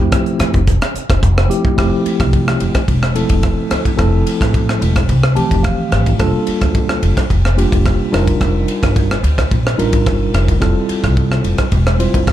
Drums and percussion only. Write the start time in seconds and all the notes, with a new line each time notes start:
0.12 kick, cross-stick, closed hi-hat
0.26 closed hi-hat
0.40 cross-stick, closed hi-hat
0.54 kick, closed hi-hat
0.67 kick, closed hi-hat
0.82 cross-stick, closed hi-hat
0.96 closed hi-hat
1.10 kick, cross-stick, closed hi-hat
1.23 kick, closed hi-hat
1.38 cross-stick
1.51 closed hi-hat
1.65 kick
1.78 kick, cross-stick, ride
2.06 ride
2.20 kick, cross-stick, ride
2.33 kick, ride
2.48 cross-stick
2.60 ride
2.75 kick, cross-stick, ride
2.88 kick, ride
3.03 cross-stick
3.16 ride
3.29 kick, ride
3.43 kick, cross-stick, ride
3.71 cross-stick, ride
3.85 kick, ride
3.99 kick, cross-stick, ride
4.27 ride
4.41 kick, cross-stick, ride
4.54 kick, ride
4.69 cross-stick
4.82 ride
4.96 kick, cross-stick, ride
5.09 kick, ride
5.24 cross-stick
5.36 ride
5.51 kick, ride
5.64 kick, cross-stick, ride
5.92 cross-stick, ride
6.06 kick, ride
6.19 kick, cross-stick, ride
6.47 ride
6.61 kick, cross-stick, ride
6.75 kick, ride
6.89 cross-stick
7.03 ride
7.17 kick, cross-stick, ride
7.30 kick, ride
7.45 cross-stick
7.58 ride
7.72 kick, ride
7.86 kick, cross-stick, ride
8.14 cross-stick, ride
8.28 kick, ride
8.41 kick, cross-stick, ride
8.68 ride
8.83 kick, cross-stick, ride
8.96 kick, ride
9.11 cross-stick
9.24 ride
9.38 kick, cross-stick, ride
9.51 kick, ride
9.67 cross-stick
9.79 ride
9.93 kick, ride
10.06 kick, cross-stick, ride
10.34 cross-stick, ride
10.48 kick, ride
10.62 kick, cross-stick, ride
10.89 ride
11.04 kick, cross-stick, ride
11.17 kick, ride
11.32 cross-stick
11.44 ride
11.58 kick, cross-stick, ride
11.72 kick, ride
11.87 cross-stick
12.00 ride
12.14 kick, ride
12.27 kick, cross-stick, ride